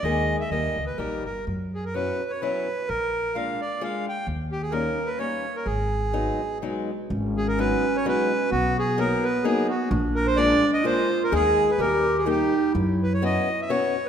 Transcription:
X:1
M:3/4
L:1/16
Q:"Swing" 1/4=128
K:G#m
V:1 name="Accordion"
d3 e d3 B A2 A2 | z2 G A B3 c B4 | A4 ^e2 =d2 e2 =g2 | z2 =G ^G A3 B c3 A |
G8 z4 | z2 G A B3 c B4 | F2 G2 A2 B2 G2 F2 | z2 A ^B =d3 ^d B3 A |
G3 B A3 G =G4 | z2 B c d3 e c3 z |]
V:2 name="Clarinet"
z12 | z12 | z12 | z12 |
z12 | C12 | B,12 | =D8 ^E4 |
G4 =G4 D4 | E8- E2 z2 |]
V:3 name="Steel-string acoustic guitar"
[G,A,DG]4 [=G,A,D=G]2 z2 [G,A,DG]2 z2 | z4 [F,B,CE]2 z2 [F,B,CE]2 z2 | z4 [G,A,=D^E]2 z2 [G,A,DE]2 z2 | z4 [=G,A,CD]2 z2 [G,A,CD]2 z2 |
z4 [F,G,B,D]2 z2 [F,G,B,D]2 z2 | z4 [F,G,B,D]2 z2 [F,G,B,D]2 z2 | z4 [F,A,B,D]2 z2 [F,A,B,D]2 z2 | z4 [G,A,=D^E]2 z2 [G,A,DE]2 z2 |
[G,A,DG]4 [=G,A,D=G]2 z2 [G,A,DG]2 z2 | z4 [B,CEF]2 z2 [B,CEF]2 z2 |]
V:4 name="Upright bass" clef=bass
D,,4 D,,2 C,,2 A,,,2 =G,,,2 | F,,8 z4 | A,,,8 z4 | D,,8 z4 |
G,,,8 z4 | G,,,8 z4 | B,,,8 z4 | A,,,8 z4 |
D,,4 D,,8 | F,,8 z4 |]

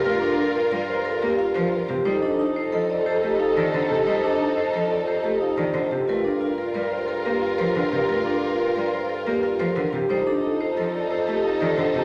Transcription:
X:1
M:6/4
L:1/8
Q:1/4=179
K:Gm
V:1 name="Marimba"
B A z B d c B G f c z G | c A z c e d c G f d c G | c A z c e d c G f d c G | B A z B d c B G f c B G |
B A z B d c B G f c B G | c A z c e d c G f d c G |]
V:2 name="Clarinet"
B B B B B B B B B B B z | A A A A A A A A A A A A | A A A A A A A A A A A z | B B B B B B B B B B B B |
B B B B B B B B B B B z | A A A A A A A A A A A A |]
V:3 name="Violin section"
[FB]8- [FB]3 z | [EA]12- | [EA]8- [EA]3 z | [FB]12- |
[FB]8- [FB]3 z | [EA]12 |]
V:4 name="Vibraphone"
F D F z B z A z F z3 | E D E z A z G z E z3 | E D E z A z G z E z3 | F D F z B z A z F A z2 |
F D F z B z A z F A z2 | E D E z A z G z E G z2 |]
V:5 name="Cello" clef=bass
A, z3 G, z2 B, z F, z C, | G, z3 F, z2 A, z E, D, C, | G, z3 F, z2 A, z E, D, C, | A, z3 G, z2 B, z F, D, C, |
A, z3 G, z2 B, z F, D, C, | G, z3 F, z2 A, z E, D, C, |]
V:6 name="Bassoon" clef=bass
G,,12 | F,,12- | F,,12 | G,,12- |
G,,12 | F,,12 |]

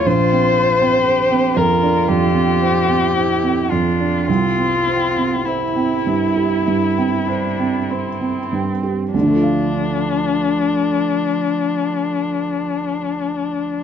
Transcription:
X:1
M:4/4
L:1/16
Q:1/4=51
K:Dm
V:1 name="Violin"
c6 B2 G6 F2 | F4 E8- E2 z2 | D16 |]
V:2 name="Cello"
F4 G2 F6 E2 D2 | C4 E6 D2 C4 | F,16 |]
V:3 name="Felt piano"
B,,, C c C c C F,, D F,, C c C c C F,, D | C,, C c C c C G,, G G,, C c C c C G,, G | [D,,D,A,Ff]16 |]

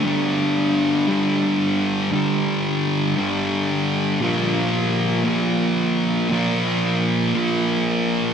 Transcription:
X:1
M:6/8
L:1/8
Q:3/8=58
K:Gm
V:1 name="Distorted electric guitar" clef=bass
[G,,D,G,]3 [G,,D,G,]3 | [G,,D,G,]3 [G,,D,G,]3 | [B,,F,B,]3 [B,,F,B,]3 | [B,,F,B,]3 [B,,F,B,]3 |]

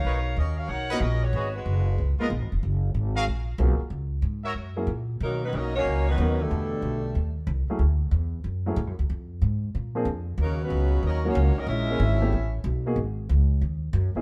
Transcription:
X:1
M:4/4
L:1/8
Q:"Swing" 1/4=186
K:F#
V:1 name="Trumpet section"
[DABc] z4 [DABd] z2 | [FGBd] z4 [EABd] z2 | z3 [FGAe] z4 | z3 [FAc=e] z4 |
[K:B] z8 | z8 | z8 | z8 |
z8 | z8 | z8 |]
V:2 name="Saxophone section"
[DAce]2 [CFAd] [CFAe] [DAcf]2 [CFAd] [B,FGc]- | [B,FGc] [G,DFB]4 z3 | z8 | z8 |
[K:B] [F,CDA] [F,CDB] [CFAd] [A,DFc]2 [F,CDB]2 [=G,=DE=A]- | [=G,=DE=A]4- [G,DEA] z3 | z8 | z8 |
[F,CDA] [F,CDB]3 [CFAd] [A,DFc]2 [CFAd] | [CGAe]6 z2 | z8 |]
V:3 name="Grand piano"
z4 z [A,B,CDF] z2 | z4 z [G,A,B,DE] z2 | z6 [F,A,CEG] z | z4 z [F,A,C=EG] z2 |
[K:B] z6 [F,B,CDA] z | z6 z [F,=A,CEG] | z4 z [F,=A,CEG] z2 | z4 z [^E,A,=C=DG] z2 |
z4 z [F,A,CDF] z2 | z [G,A,CEG] z [=A,B,CE=G] z3 [^A,B,DF^G] | z6 z [B,CDEG] |]
V:4 name="Trombone section" clef=bass
z8 | z8 | z8 | z8 |
[K:B] [D,F,A,] [D,F,B,] [F,A,D] [F,A,C]2 [D,F,B,]2 [B,,=D,=A,]- | [B,,=D,=A,]4- [B,,D,A,] z3 | z8 | z8 |
[C,F,A,] [C,F,B,]3 [F,A,D] [F,A,C]2 [F,A,D] | [G,CE]6 z2 | z8 |]
V:5 name="Upright bass" clef=bass
B,,,2 D,,2 B,,,2 A,,,2 | G,,,2 F,,,2 C,, z (3A,,, G,,, E,,, | F,,,2 G,,,2 A,,,2 B,,, z | C,,2 G,,2 F,,2 A,,2 |
[K:B] B,,2 B,,,2 C,,2 D,,2 | E,,2 B,,,2 D,,2 =C,, z | =D,,2 E,,2 F,,2 (3=A,, F,, D,, | =F,,2 _A,,2 ^A,,2 ^E,,2 |
D,,2 C,,2 D,,2 C,, z | A,,,2 G,,,2 =A,,,2 B,,,2 | G,,,2 C,,2 D,,2 F,, z |]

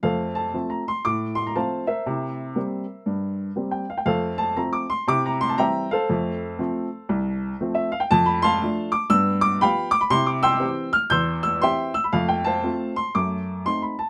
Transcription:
X:1
M:4/4
L:1/16
Q:"Swing" 1/4=119
K:F
V:1 name="Upright piano"
[Acf]2 a3 b c'2 d'2 c' b [cfa]2 [Bce]2- | [Bce]12- [Bce] g f g | [Acf]2 a2 b d' c'2 d' b c' a [egb]2 [Acf]2- | [Acf]12- [Acf] e f g |
[K:C] a b [fac']4 d'2 e'2 d'2 [fgb]2 d' b | c' d' [gc'e']4 f'2 [c'e'g']2 e'2 [egc']2 e' b | f g [cfa]4 c'2 d'4 c' b a2 |]
V:2 name="Upright piano"
[F,,A,]4 [F,A,C]4 A,,4 [F,A,C]4 | [C,E]4 [G,B,C]4 G,,4 [G,B,C]4 | [F,,A,]4 [F,A,C]4 [C,E]4 [E,G,C]4 | [F,,A,]4 [F,A,C]4 C,,4 [F,A,C]4 |
[K:C] F,,4 [F,A,D]4 [G,,B,]4 [F,B,G]4 | [C,E]4 [E,CG]4 E,,4 [E,CG]4 | [F,,A,]4 [A,CF]4 [^F,,A,]4 [A,C^D]4 |]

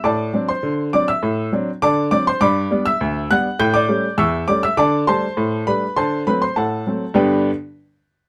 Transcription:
X:1
M:2/4
L:1/16
Q:1/4=101
K:G
V:1 name="Upright piano"
[dad']3 [cc']3 [dd'] [ee']- | [ee']2 z2 [dad']2 [dd'] [cc'] | [dbd']3 [ee']3 [ff']2 | [gg'] [dd']3 [e^c'e']2 [dd'] [ee'] |
[dad']2 [cac']4 [Bb]2 | [cac']2 [Bb] [cc'] [Afa]4 | [G,,D,B,DGBg]2 z6 |]
V:2 name="Upright piano" clef=bass
A,,2 [F,CD]2 D,2 [F,CD]2 | A,,2 [F,CD]2 D,2 [F,CD]2 | G,,2 [G,B,D]2 D,,2 [G,B,D]2 | A,,2 [G,A,^C]2 E,,2 [G,A,C]2 |
D,2 [G,A,D]2 A,,2 [G,A,D]2 | D,2 [F,A,C]2 A,,2 [F,A,C]2 | z8 |]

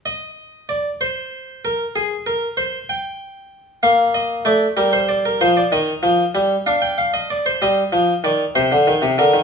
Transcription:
X:1
M:6/8
L:1/16
Q:3/8=64
K:Eb
V:1 name="Harpsichord"
e4 d2 c4 B2 | A2 B2 c2 g6 | f2 e2 d2 B c d B c d | e6 f g f e d c |
e4 d2 c4 B2 |]
V:2 name="Harpsichord" clef=bass
z12 | z12 | B,4 =A,2 G,4 F,2 | E,2 F,2 G,2 D6 |
G,2 F,2 E,2 C, D, E, C, D, E, |]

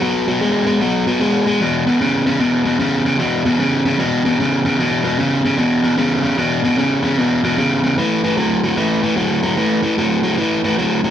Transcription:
X:1
M:4/4
L:1/8
Q:"Swing" 1/4=151
K:E
V:1 name="Overdriven electric guitar" clef=bass
[B,,F,] [B,,F,] [B,,G,] [B,,G,] [B,,F,] [B,,F,] [B,,G,] [B,,G,] | [E,,B,,] [E,,B,,] [E,,C,] [E,,C,] [E,,B,,] [E,,B,,] [E,,C,] [E,,C,] | [E,,B,,] [E,,B,,] [E,,C,] [E,,C,] [E,,B,,] [E,,B,,] [E,,C,] [E,,C,] | [E,,B,,] [E,,B,,] [E,,C,] [E,,C,] [E,,B,,] [E,,B,,] [E,,C,] [E,,C,] |
[E,,B,,] [E,,B,,] [E,,C,] [E,,C,] [E,,B,,] [E,,B,,] [E,,C,] [E,,C,] | [A,,E,] [A,,E,] [A,,F,] [A,,F,] [A,,E,] [A,,E,] [A,,F,] [A,,F,] | [A,,E,] [A,,E,] [A,,F,] [A,,F,] [A,,E,] [A,,E,] [A,,F,] [A,,F,] |]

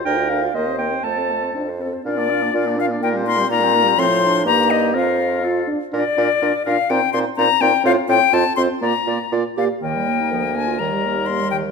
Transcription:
X:1
M:2/4
L:1/16
Q:1/4=123
K:Bb
V:1 name="Flute"
B d B d B c B c | A c A c A c A c | d6 f2 | g2 c'2 b4 |
c'4 b2 e2 | f6 z2 | d6 f2 | g2 c'2 b2 g2 |
f2 g2 a2 c'2 | b4 z2 f2 | [K:Eb] g6 a2 | b4 c'2 g2 |]
V:2 name="Oboe"
B4 c4 | A6 z2 | f d f d f d f d | B c B c B c B c |
c4 G4 | B4 A2 z2 | B2 B2 B2 B2 | c2 c2 c2 c2 |
c2 c2 c2 c2 | d2 d2 d2 d2 | [K:Eb] B8- | B8 |]
V:3 name="Clarinet"
g2 f2 e2 g2 | a4 z4 | F D F D F D F D | E C E C E C E C |
C2 D2 E4 | F4 F2 z2 | F2 F2 F2 F2 | E2 E2 E2 E2 |
F2 F2 F2 F2 | F2 F2 F2 G2 | [K:Eb] E, G, B, E F, B, D F | E, G, B, E B, G, E, G, |]
V:4 name="French horn"
D F D F B, C B, C | A, C A, C D2 C2 | D B, D B, D B, D B, | B, G, B, G, B, G, B, G, |
F,4 B,4 | C4 F2 D2 | D2 D2 D2 D2 | C2 C2 C2 C2 |
C2 C2 C2 C2 | B,2 B,2 B,2 B,2 | [K:Eb] B,8 | G,8 |]
V:5 name="Bassoon" clef=bass
D,,4 E,,4 | F,,4 F,,4 | B,,4 B,,4 | B,,4 B,,4 |
A,,4 G,,4 | F,,6 z2 | B,,2 B,,2 B,,2 B,,2 | B,,2 B,,2 B,,2 B,,2 |
A,,2 A,,2 F,,2 F,,2 | B,,2 B,,2 B,,2 B,,2 | [K:Eb] E,,4 D,,4 | E,,8 |]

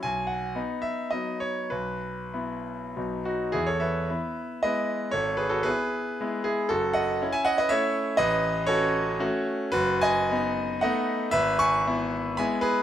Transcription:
X:1
M:3/4
L:1/16
Q:1/4=114
K:E
V:1 name="Grand piano"
g2 f4 e2 d2 c2 | B8- B2 [DF]2 | [EG] [Ac] [Be]6 [Bd]4 | [Ac]2 [GB] [FA] [GB]6 [EG]2 |
[FA]2 [df]3 [eg] [df] [Bd] [ce]4 | [Bd]4 [Ac]6 z2 | [FB]2 [dg]6 [df]4 | [Be]2 [gc']6 [gb]2 [GB]2 |]
V:2 name="Grand piano"
B,,,4 [B,D]4 [F,B,D]4 | B,,,4 [B,E]4 [B,,,F,B,D]4 | E,,4 [B,E]4 [G,B,E]4 | G,,,4 [B,E]4 [G,B,E]4 |
F,,,4 [CE]4 [A,CE]4 | A,,,4 [CF]4 [A,CF]4 | F,,,4 [B,D]4 [A,B,D]4 | G,,,4 [B,E]4 [G,B,E]4 |]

